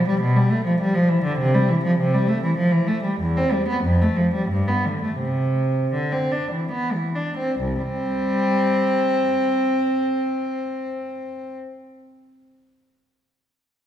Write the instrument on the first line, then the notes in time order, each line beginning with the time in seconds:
cello
0.08 G3
0.21 B2
0.36 G3
0.50 A3
0.65 F3
0.80 G3
0.95 F3
1.09 E3
1.24 D3
1.38 C3
1.55 G3
1.69 E3
1.84 F3
1.98 C3
2.14 G3
2.28 A3
2.43 E3
2.57 F3
2.71 E3
2.87 A3
3.03 G3
3.20 E2
3.37 C4
3.53 G3
3.68 B3
3.83 F2
4.02 A3
4.17 F3
4.34 G3
4.49 G2
4.68 B3
4.85 D3
5.02 A3
5.19 C3
5.94 D3
6.12 C4
6.32 D4
6.51 E3
6.72 B3
6.93 E3
7.16 D4
7.37 C4
7.60 C2
7.82 G3 C4